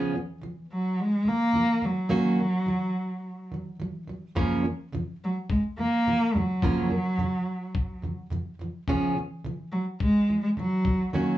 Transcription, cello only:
0.72 1.02 F#3 medium
1.00 1.29 G#3 medium
1.28 1.86 A#3 loud
1.85 3.53 F#3 medium
5.24 5.36 F#3 medium
5.50 5.63 G#3 medium
5.78 6.37 A#3 loud
6.35 8.04 F#3 medium
9.72 9.85 F#3 medium
10.01 10.40 G#3 medium
10.43 10.49 G#3 medium
10.59 11.10 F#3 medium
11.14 11.38 F#3 medium

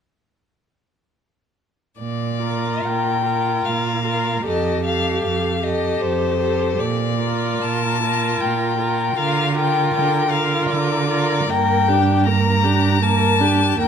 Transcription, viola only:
2.42 3.24 F4 soft
3.25 4.03 F4 soft
4.05 4.44 F4 soft
4.45 4.84 G4 soft
4.85 5.61 G4 soft
5.63 6.38 G4 soft
6.40 6.78 G4 soft
7.21 8.01 F4 soft
8.03 8.78 F4 soft
8.79 9.16 F4 soft
9.17 9.55 F4 soft
9.57 10.31 F4 soft
10.32 11.08 F4 soft
11.09 11.49 F4 soft
11.51 11.91 A#3 soft
11.89 12.28 D4 soft
12.27 12.66 A#3 soft
12.64 13.02 D4 soft
13.03 13.42 A#3 soft
13.41 13.79 D4 soft
13.79 13.88 A#3 soft

